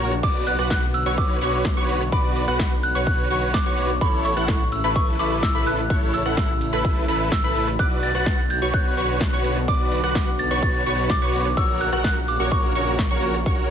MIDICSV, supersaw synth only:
0, 0, Header, 1, 2, 480
1, 0, Start_track
1, 0, Key_signature, 2, "minor"
1, 0, Tempo, 472441
1, 238, Time_signature, 4, 2, 24, 8
1, 13922, End_track
2, 0, Start_track
2, 0, Title_t, "Supersaw synth"
2, 0, Program_c, 0, 81
2, 0, Note_on_c, 0, 66, 104
2, 0, Note_on_c, 0, 70, 92
2, 0, Note_on_c, 0, 73, 107
2, 138, Note_off_c, 0, 66, 0
2, 138, Note_off_c, 0, 70, 0
2, 138, Note_off_c, 0, 73, 0
2, 238, Note_on_c, 0, 66, 81
2, 238, Note_on_c, 0, 71, 77
2, 238, Note_on_c, 0, 74, 87
2, 569, Note_off_c, 0, 66, 0
2, 569, Note_off_c, 0, 71, 0
2, 569, Note_off_c, 0, 74, 0
2, 597, Note_on_c, 0, 66, 102
2, 598, Note_on_c, 0, 71, 90
2, 598, Note_on_c, 0, 78, 104
2, 858, Note_off_c, 0, 66, 0
2, 858, Note_off_c, 0, 71, 0
2, 858, Note_off_c, 0, 78, 0
2, 1078, Note_on_c, 0, 66, 84
2, 1078, Note_on_c, 0, 71, 75
2, 1078, Note_on_c, 0, 73, 94
2, 1409, Note_off_c, 0, 66, 0
2, 1409, Note_off_c, 0, 71, 0
2, 1409, Note_off_c, 0, 73, 0
2, 1437, Note_on_c, 0, 66, 90
2, 1438, Note_on_c, 0, 71, 79
2, 1438, Note_on_c, 0, 73, 93
2, 1698, Note_off_c, 0, 66, 0
2, 1698, Note_off_c, 0, 73, 0
2, 1699, Note_off_c, 0, 71, 0
2, 1798, Note_on_c, 0, 66, 95
2, 1798, Note_on_c, 0, 71, 92
2, 1798, Note_on_c, 0, 73, 104
2, 2059, Note_off_c, 0, 66, 0
2, 2059, Note_off_c, 0, 71, 0
2, 2059, Note_off_c, 0, 73, 0
2, 2158, Note_on_c, 0, 66, 81
2, 2158, Note_on_c, 0, 71, 73
2, 2158, Note_on_c, 0, 74, 88
2, 2489, Note_off_c, 0, 66, 0
2, 2489, Note_off_c, 0, 71, 0
2, 2489, Note_off_c, 0, 74, 0
2, 2519, Note_on_c, 0, 66, 95
2, 2519, Note_on_c, 0, 71, 94
2, 2519, Note_on_c, 0, 78, 105
2, 2779, Note_off_c, 0, 66, 0
2, 2779, Note_off_c, 0, 71, 0
2, 2779, Note_off_c, 0, 78, 0
2, 2998, Note_on_c, 0, 73, 93
2, 2999, Note_on_c, 0, 66, 82
2, 2999, Note_on_c, 0, 71, 77
2, 3329, Note_off_c, 0, 66, 0
2, 3329, Note_off_c, 0, 71, 0
2, 3329, Note_off_c, 0, 73, 0
2, 3358, Note_on_c, 0, 66, 88
2, 3359, Note_on_c, 0, 71, 79
2, 3359, Note_on_c, 0, 73, 96
2, 3619, Note_off_c, 0, 66, 0
2, 3619, Note_off_c, 0, 71, 0
2, 3619, Note_off_c, 0, 73, 0
2, 3719, Note_on_c, 0, 71, 93
2, 3720, Note_on_c, 0, 66, 102
2, 3720, Note_on_c, 0, 73, 106
2, 3979, Note_off_c, 0, 66, 0
2, 3979, Note_off_c, 0, 71, 0
2, 3979, Note_off_c, 0, 73, 0
2, 4078, Note_on_c, 0, 64, 76
2, 4078, Note_on_c, 0, 69, 71
2, 4079, Note_on_c, 0, 73, 84
2, 4409, Note_off_c, 0, 64, 0
2, 4409, Note_off_c, 0, 69, 0
2, 4409, Note_off_c, 0, 73, 0
2, 4437, Note_on_c, 0, 64, 98
2, 4438, Note_on_c, 0, 69, 87
2, 4438, Note_on_c, 0, 78, 107
2, 4698, Note_off_c, 0, 64, 0
2, 4698, Note_off_c, 0, 69, 0
2, 4698, Note_off_c, 0, 78, 0
2, 4918, Note_on_c, 0, 64, 85
2, 4918, Note_on_c, 0, 69, 80
2, 4918, Note_on_c, 0, 71, 91
2, 5249, Note_off_c, 0, 64, 0
2, 5249, Note_off_c, 0, 69, 0
2, 5249, Note_off_c, 0, 71, 0
2, 5277, Note_on_c, 0, 64, 83
2, 5277, Note_on_c, 0, 69, 82
2, 5277, Note_on_c, 0, 71, 92
2, 5538, Note_off_c, 0, 64, 0
2, 5538, Note_off_c, 0, 69, 0
2, 5538, Note_off_c, 0, 71, 0
2, 5638, Note_on_c, 0, 64, 100
2, 5638, Note_on_c, 0, 69, 96
2, 5638, Note_on_c, 0, 71, 108
2, 5898, Note_off_c, 0, 69, 0
2, 5899, Note_off_c, 0, 64, 0
2, 5899, Note_off_c, 0, 71, 0
2, 5997, Note_on_c, 0, 64, 76
2, 5997, Note_on_c, 0, 69, 77
2, 5997, Note_on_c, 0, 73, 89
2, 6329, Note_off_c, 0, 64, 0
2, 6329, Note_off_c, 0, 69, 0
2, 6329, Note_off_c, 0, 73, 0
2, 6359, Note_on_c, 0, 64, 102
2, 6359, Note_on_c, 0, 69, 89
2, 6359, Note_on_c, 0, 78, 104
2, 6619, Note_off_c, 0, 64, 0
2, 6619, Note_off_c, 0, 69, 0
2, 6619, Note_off_c, 0, 78, 0
2, 6839, Note_on_c, 0, 64, 86
2, 6839, Note_on_c, 0, 69, 79
2, 6839, Note_on_c, 0, 71, 92
2, 7169, Note_off_c, 0, 71, 0
2, 7170, Note_off_c, 0, 64, 0
2, 7170, Note_off_c, 0, 69, 0
2, 7199, Note_on_c, 0, 64, 85
2, 7199, Note_on_c, 0, 71, 97
2, 7200, Note_on_c, 0, 69, 79
2, 7459, Note_off_c, 0, 64, 0
2, 7459, Note_off_c, 0, 69, 0
2, 7459, Note_off_c, 0, 71, 0
2, 7559, Note_on_c, 0, 64, 101
2, 7559, Note_on_c, 0, 69, 92
2, 7559, Note_on_c, 0, 71, 114
2, 7819, Note_off_c, 0, 64, 0
2, 7819, Note_off_c, 0, 69, 0
2, 7819, Note_off_c, 0, 71, 0
2, 7919, Note_on_c, 0, 66, 80
2, 7919, Note_on_c, 0, 71, 74
2, 7919, Note_on_c, 0, 74, 90
2, 8249, Note_off_c, 0, 66, 0
2, 8249, Note_off_c, 0, 74, 0
2, 8250, Note_off_c, 0, 71, 0
2, 8279, Note_on_c, 0, 66, 102
2, 8279, Note_on_c, 0, 71, 89
2, 8279, Note_on_c, 0, 78, 107
2, 8539, Note_off_c, 0, 66, 0
2, 8539, Note_off_c, 0, 71, 0
2, 8539, Note_off_c, 0, 78, 0
2, 8758, Note_on_c, 0, 71, 79
2, 8758, Note_on_c, 0, 73, 92
2, 8759, Note_on_c, 0, 66, 80
2, 9089, Note_off_c, 0, 66, 0
2, 9089, Note_off_c, 0, 71, 0
2, 9089, Note_off_c, 0, 73, 0
2, 9118, Note_on_c, 0, 66, 90
2, 9118, Note_on_c, 0, 71, 83
2, 9118, Note_on_c, 0, 73, 97
2, 9378, Note_off_c, 0, 66, 0
2, 9379, Note_off_c, 0, 71, 0
2, 9379, Note_off_c, 0, 73, 0
2, 9478, Note_on_c, 0, 66, 97
2, 9478, Note_on_c, 0, 71, 96
2, 9478, Note_on_c, 0, 73, 111
2, 9738, Note_off_c, 0, 66, 0
2, 9739, Note_off_c, 0, 71, 0
2, 9739, Note_off_c, 0, 73, 0
2, 9837, Note_on_c, 0, 71, 71
2, 9838, Note_on_c, 0, 66, 84
2, 9838, Note_on_c, 0, 74, 90
2, 10169, Note_off_c, 0, 66, 0
2, 10169, Note_off_c, 0, 71, 0
2, 10169, Note_off_c, 0, 74, 0
2, 10198, Note_on_c, 0, 66, 96
2, 10198, Note_on_c, 0, 71, 89
2, 10198, Note_on_c, 0, 78, 103
2, 10458, Note_off_c, 0, 66, 0
2, 10458, Note_off_c, 0, 71, 0
2, 10459, Note_off_c, 0, 78, 0
2, 10678, Note_on_c, 0, 66, 88
2, 10678, Note_on_c, 0, 71, 79
2, 10678, Note_on_c, 0, 73, 93
2, 11009, Note_off_c, 0, 66, 0
2, 11009, Note_off_c, 0, 71, 0
2, 11009, Note_off_c, 0, 73, 0
2, 11038, Note_on_c, 0, 66, 83
2, 11038, Note_on_c, 0, 71, 78
2, 11038, Note_on_c, 0, 73, 92
2, 11298, Note_off_c, 0, 66, 0
2, 11299, Note_off_c, 0, 71, 0
2, 11299, Note_off_c, 0, 73, 0
2, 11398, Note_on_c, 0, 66, 103
2, 11398, Note_on_c, 0, 71, 95
2, 11398, Note_on_c, 0, 73, 107
2, 11658, Note_off_c, 0, 66, 0
2, 11658, Note_off_c, 0, 71, 0
2, 11659, Note_off_c, 0, 73, 0
2, 11758, Note_on_c, 0, 66, 80
2, 11758, Note_on_c, 0, 70, 71
2, 11758, Note_on_c, 0, 73, 87
2, 12089, Note_off_c, 0, 66, 0
2, 12089, Note_off_c, 0, 70, 0
2, 12089, Note_off_c, 0, 73, 0
2, 12117, Note_on_c, 0, 66, 101
2, 12117, Note_on_c, 0, 70, 88
2, 12117, Note_on_c, 0, 78, 106
2, 12378, Note_off_c, 0, 66, 0
2, 12378, Note_off_c, 0, 70, 0
2, 12378, Note_off_c, 0, 78, 0
2, 12597, Note_on_c, 0, 66, 81
2, 12597, Note_on_c, 0, 70, 79
2, 12598, Note_on_c, 0, 73, 92
2, 12929, Note_off_c, 0, 66, 0
2, 12929, Note_off_c, 0, 70, 0
2, 12929, Note_off_c, 0, 73, 0
2, 12958, Note_on_c, 0, 66, 88
2, 12958, Note_on_c, 0, 70, 83
2, 12958, Note_on_c, 0, 73, 97
2, 13218, Note_off_c, 0, 66, 0
2, 13218, Note_off_c, 0, 73, 0
2, 13219, Note_off_c, 0, 70, 0
2, 13318, Note_on_c, 0, 66, 102
2, 13318, Note_on_c, 0, 70, 90
2, 13318, Note_on_c, 0, 73, 108
2, 13579, Note_off_c, 0, 66, 0
2, 13579, Note_off_c, 0, 70, 0
2, 13579, Note_off_c, 0, 73, 0
2, 13678, Note_on_c, 0, 66, 82
2, 13678, Note_on_c, 0, 70, 76
2, 13678, Note_on_c, 0, 73, 89
2, 13922, Note_off_c, 0, 66, 0
2, 13922, Note_off_c, 0, 70, 0
2, 13922, Note_off_c, 0, 73, 0
2, 13922, End_track
0, 0, End_of_file